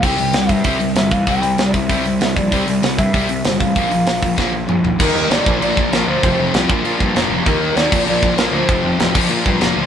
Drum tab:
CC |x-------|--------|--------|--------|
HH |-ooooooo|oooooooo|oooooooo|oooo----|
SD |--o---o-|--o---o-|--o---o-|--o-o---|
T2 |--------|--------|--------|------o-|
FT |--------|--------|--------|-------o|
BD |o--oo--o|o--oo--o|o--oo--o|o--oo---|

CC |x-x-x-x-|x-x-x-x-|x-xxx-x-|x-xxx-x-|
HH |--------|--------|--------|--------|
SD |--o---o-|--o---o-|--o---o-|--o---o-|
T2 |--------|--------|--------|--------|
FT |--------|--------|--------|--------|
BD |o--o-o--|o--o-o--|o--o-o--|o--o-o--|